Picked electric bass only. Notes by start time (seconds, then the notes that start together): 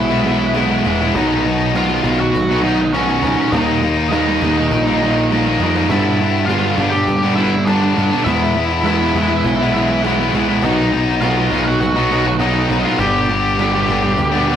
Already playing: B1
0.84 E1
1.14 B1
2.04 B1
2.34 B1
3.22 C#2
3.52 D#2
4.41 D#2
4.71 A#1
5.60 F2
5.89 G2
6.77 G2
7.07 G2
7.97 G2
8.26 E2
9.15 E2
9.44 B1
10.33 C2
10.62 B1
11.51 B1
11.80 B1
12.69 B1
12.98 G1
13.87 G1
14.17 D2